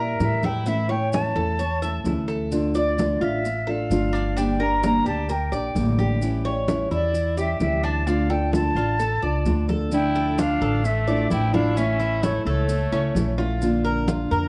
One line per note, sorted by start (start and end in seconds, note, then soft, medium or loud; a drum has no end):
0.00 0.16 A#2 medium
0.00 0.20 G3 soft
0.00 0.19 E4 soft
0.00 0.42 A#4 medium
0.00 0.19 E5 medium
0.20 1.29 A2 medium
0.20 0.65 E3 medium
0.20 0.66 G3 medium
0.20 0.66 E4 medium
0.20 0.46 E5 medium
0.20 high conga medium
0.20 maracas medium
0.43 0.65 E4 medium
0.43 0.69 G5 medium
0.43 high conga medium
0.43 maracas soft
0.66 0.88 E3 medium
0.66 0.89 A3 medium
0.66 0.89 C#4 medium
0.66 0.88 E4 medium
0.66 0.92 E5 medium
0.66 high conga soft
0.66 maracas medium
0.89 1.12 A3 soft
0.89 1.12 C#4 soft
0.89 1.12 E4 soft
0.89 1.34 C#5 medium
0.89 1.11 G5 medium
0.89 high conga soft
1.12 1.35 E3 medium
1.12 1.35 A3 medium
1.12 1.35 C#4 medium
1.12 1.34 E4 medium
1.12 2.24 A5 loud
1.12 high conga medium
1.12 maracas medium
1.35 2.01 E2 medium
1.35 1.58 A3 soft
1.35 1.58 C#4 soft
1.35 1.58 E4 soft
1.35 1.58 A4 medium
1.35 high conga soft
1.35 maracas soft
1.59 1.81 C#5 medium
1.59 muted nylon-string guitar stroke medium
1.59 high conga soft
1.59 maracas medium
1.82 2.04 A3 soft
1.82 2.05 C#4 soft
1.82 2.04 E4 soft
1.82 2.27 E5 medium
1.82 high conga soft
1.82 maracas medium
2.04 3.14 D2 medium
2.04 2.51 E3 medium
2.04 2.51 A3 medium
2.04 2.51 C#4 medium
2.04 2.51 E4 medium
2.04 high conga medium
2.04 maracas medium
2.28 2.73 A4 medium
2.28 maracas soft
2.51 2.74 D3 medium
2.51 2.74 A3 medium
2.51 2.74 D4 medium
2.51 2.73 F4 medium
2.51 high conga soft
2.51 maracas medium
2.74 2.97 A3 soft
2.74 2.98 D4 soft
2.74 2.97 F4 soft
2.74 3.20 D5 medium
2.74 3.25 D5 medium
2.74 high conga soft
2.74 maracas medium
2.97 3.20 D3 medium
2.97 3.20 A3 medium
2.97 3.20 D4 medium
2.97 3.19 F4 medium
2.97 high conga medium
2.97 maracas medium
3.21 3.86 A1 medium
3.21 3.44 A3 soft
3.21 3.43 D4 soft
3.21 3.43 F4 soft
3.21 3.66 F4 medium
3.21 3.71 E5 medium
3.21 high conga soft
3.21 maracas soft
3.45 muted nylon-string guitar stroke medium
3.45 high conga soft
3.45 maracas medium
3.67 3.89 A3 soft
3.67 3.90 D4 soft
3.67 3.89 F4 soft
3.67 4.12 A4 medium
3.67 4.39 F5 medium
3.67 high conga soft
3.90 5.00 G1 medium
3.90 4.35 D3 medium
3.90 4.36 A3 medium
3.90 4.36 D4 medium
3.90 4.36 F4 medium
3.90 high conga medium
3.90 maracas medium
4.13 4.36 D4 medium
4.13 maracas soft
4.37 4.59 D3 medium
4.37 4.60 G3 medium
4.37 4.60 A#3 medium
4.37 4.59 D4 medium
4.37 4.60 D4 medium
4.37 4.59 G4 medium
4.37 4.64 G5 medium
4.37 high conga soft
4.37 maracas medium
4.60 4.83 A#3 soft
4.60 4.83 D4 soft
4.60 4.82 G4 soft
4.60 5.05 A#4 medium
4.60 4.84 A#5 medium
4.60 high conga soft
4.83 5.05 D3 medium
4.83 5.05 G3 medium
4.83 5.06 A#3 medium
4.83 5.06 D4 medium
4.83 5.05 G4 medium
4.83 5.06 A#5 loud
4.83 high conga medium
4.83 maracas medium
5.06 5.49 D2 medium
5.06 5.29 A#3 soft
5.06 5.29 D4 soft
5.06 5.28 G4 soft
5.06 5.29 G4 medium
5.06 5.33 A5 medium
5.06 high conga soft
5.06 maracas soft
5.29 5.52 A#4 medium
5.29 5.77 G5 medium
5.29 muted nylon-string guitar stroke medium
5.29 high conga soft
5.29 maracas medium
5.52 5.74 A#1 medium
5.52 5.75 A#3 soft
5.52 5.75 D4 soft
5.52 5.75 G4 soft
5.52 5.97 D5 medium
5.52 high conga soft
5.52 maracas medium
5.75 6.85 A1 medium
5.75 6.21 D3 medium
5.75 6.21 G3 medium
5.75 6.21 A#3 medium
5.75 6.22 D4 medium
5.75 6.22 G4 medium
5.75 high conga medium
5.75 maracas medium
5.99 6.44 G4 medium
5.99 high conga medium
5.99 maracas soft
6.21 6.44 E3 medium
6.21 6.44 G3 medium
6.21 6.44 C#4 medium
6.21 6.43 E4 medium
6.21 high conga soft
6.21 maracas medium
6.45 6.67 G3 soft
6.45 6.67 C#4 soft
6.45 6.67 E4 soft
6.45 6.90 C#5 medium
6.45 high conga soft
6.67 6.90 E3 medium
6.67 6.90 G3 medium
6.67 6.90 C#4 medium
6.67 6.89 E4 medium
6.67 high conga medium
6.67 maracas medium
6.91 7.57 E2 medium
6.91 7.13 G3 soft
6.91 7.13 C#4 soft
6.91 7.13 E4 soft
6.91 7.36 E4 medium
6.91 7.35 D5 medium
6.91 high conga soft
6.91 maracas soft
7.13 muted nylon-string guitar stroke medium
7.13 high conga soft
7.13 maracas medium
7.37 7.59 G3 soft
7.37 7.60 C#4 soft
7.37 7.60 E4 soft
7.37 7.82 G4 medium
7.37 7.60 E5 medium
7.37 high conga soft
7.37 maracas medium
7.60 8.70 D2 medium
7.60 8.06 E3 medium
7.60 8.06 G3 medium
7.60 8.06 C#4 medium
7.60 8.07 E4 medium
7.60 7.85 E5 loud
7.60 high conga medium
7.60 maracas medium
7.84 8.06 D4 medium
7.84 8.08 A5 medium
7.84 maracas soft
8.07 8.29 D3 medium
8.07 8.29 A3 medium
8.07 8.29 D4 medium
8.07 8.28 F4 medium
8.07 8.31 F5 medium
8.07 high conga soft
8.07 maracas medium
8.29 8.52 A3 soft
8.29 8.52 D4 soft
8.29 8.52 F4 soft
8.29 8.75 A4 medium
8.29 8.53 G5 medium
8.29 high conga soft
8.52 8.75 D3 medium
8.52 8.75 A3 medium
8.52 8.76 D4 medium
8.52 8.75 F4 medium
8.52 9.65 A5 loud
8.52 high conga medium
8.52 maracas medium
8.75 9.19 A1 medium
8.75 8.98 A3 soft
8.75 8.99 D4 soft
8.75 8.98 F4 soft
8.75 8.99 F4 medium
8.75 high conga soft
8.75 maracas soft
8.99 9.22 A4 medium
8.99 muted nylon-string guitar stroke medium
8.99 high conga soft
8.99 maracas medium
9.22 9.44 C#2 medium
9.22 9.45 A3 soft
9.22 9.45 D4 soft
9.22 9.45 F4 soft
9.22 9.67 D5 medium
9.22 high conga soft
9.45 10.55 D2 medium
9.45 9.90 D3 medium
9.45 9.91 A3 medium
9.45 9.92 D4 medium
9.45 9.92 F4 medium
9.45 high conga medium
9.45 maracas medium
9.69 9.91 A4 medium
9.69 high conga medium
9.69 maracas soft
9.91 10.83 D3 medium
9.91 10.83 F3 medium
9.91 10.84 A3 medium
9.91 10.84 D4 medium
9.91 10.40 E4 medium
9.91 10.42 G5 loud
9.91 high conga soft
9.91 maracas medium
10.15 10.38 A4 medium
10.15 high conga soft
10.15 maracas soft
10.38 10.87 D4 medium
10.38 10.61 F4 medium
10.38 10.87 F5 loud
10.38 high conga medium
10.38 maracas medium
10.61 11.27 A1 medium
10.61 11.06 A4 medium
10.61 high conga soft
10.61 maracas soft
10.84 11.30 A3 medium
10.84 11.31 E5 medium
10.84 muted nylon-string guitar stroke medium
10.84 high conga soft
10.84 maracas medium
11.08 11.29 F3 medium
11.08 11.30 A3 medium
11.08 11.31 D4 medium
11.08 11.30 E4 medium
11.08 11.52 D5 medium
11.08 high conga soft
11.08 maracas soft
11.30 12.40 A1 loud
11.30 11.53 F3 medium
11.30 11.53 A3 medium
11.30 11.53 D4 medium
11.30 11.55 E4 medium
11.30 11.52 E4 medium
11.30 11.56 G5 loud
11.30 high conga medium
11.30 maracas medium
11.53 11.76 F3 medium
11.53 11.76 A3 medium
11.53 11.77 D4 medium
11.53 11.76 D4 medium
11.53 11.76 E4 medium
11.53 11.78 F5 medium
11.53 high conga medium
11.53 maracas soft
11.76 12.68 E3 medium
11.76 12.69 A3 medium
11.76 12.24 C#4 medium
11.76 12.00 C#4 medium
11.76 12.69 C#4 medium
11.76 12.69 E4 medium
11.76 12.25 E5 loud
11.76 high conga soft
11.76 maracas medium
12.00 12.45 E4 medium
12.00 high conga soft
12.00 maracas soft
12.23 12.45 A3 medium
12.23 12.46 C#5 medium
12.23 high conga medium
12.23 maracas medium
12.45 12.89 C#2 medium
12.45 13.35 A3 medium
12.45 12.91 A4 medium
12.45 13.35 C#5 medium
12.45 high conga soft
12.45 maracas soft
12.69 muted nylon-string guitar stroke medium
12.69 high conga soft
12.69 maracas medium
12.92 13.14 C#2 medium
12.92 13.15 A3 medium
12.92 13.37 C#4 medium
12.92 13.15 C#4 medium
12.92 13.15 E4 medium
12.92 high conga soft
12.92 maracas soft
13.15 14.25 A#1 medium
13.15 13.38 E3 soft
13.15 13.38 A3 medium
13.15 13.38 C#4 soft
13.15 13.38 E4 medium
13.15 high conga medium
13.15 maracas medium
13.38 13.62 A3 medium
13.38 13.61 C#4 medium
13.38 13.61 E4 medium
13.38 13.83 F4 medium
13.38 high conga soft
13.38 maracas soft
13.61 14.48 D3 medium
13.61 14.48 A#3 medium
13.61 14.48 D4 medium
13.61 14.48 F4 medium
13.61 high conga soft
13.61 maracas medium
13.85 14.07 A#4 medium
13.85 high conga soft
13.85 maracas soft
14.08 14.31 F4 medium
14.08 high conga medium
14.08 maracas medium
14.31 14.48 F2 medium
14.31 14.48 A#4 medium
14.31 high conga soft
14.31 maracas soft